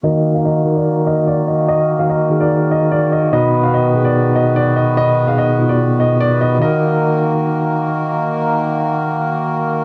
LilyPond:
<<
  \new Staff \with { instrumentName = "Grand piano" } { \time 4/4 \key ees \minor \tempo 4 = 146 ees''8. f''16 ees''8. d''8. ees''8 d''8 ees''8 | ees''8. f''16 ees''8. d''8. ees''8 d''8 ees''8 | dis''8. f''16 dis''8. d''8. dis''8 d''8 dis''8 | dis''8. f''16 dis''8. d''8. dis''8 d''8 dis''8 |
ees''2. r4 | r1 | }
  \new Staff \with { instrumentName = "Tine electric piano" } { \time 4/4 \key ees \minor <ees ees' ges' bes'>4 r8 <ees ees' ges' bes'>8. r16 <ees ees' ges' bes'>4. | r8. <ees ees' ges' bes'>8 r16 <ees ees' ges' aes'>16 <ees ees' ges' bes'>4. r8. | <b, b dis' fis'>4 r8 <b, b dis' aes'>8. r16 <b, b dis' fis'>4. | r8. <b, b dis' aes'>8 r16 <b, b dis' f'>16 <b, b dis' fis'>4. r8. |
<ees ees' ges' bes'>1~ | <ees ees' ges' bes'>1 | }
  \new Staff \with { instrumentName = "Harmonium" } { \time 4/4 \key ees \minor <bes bes'>1~ | <bes bes'>1 | <b b'>1~ | <b b'>1 |
<ees bes ges' bes'>1~ | <ees bes ges' bes'>1 | }
  \new Staff \with { instrumentName = "Harmonium" } { \time 4/4 \key ees \minor <ees ges'>1~ | <ees ges'>1~ | <ees ges'>1~ | <ees ges'>1 |
r1 | r1 | }
>>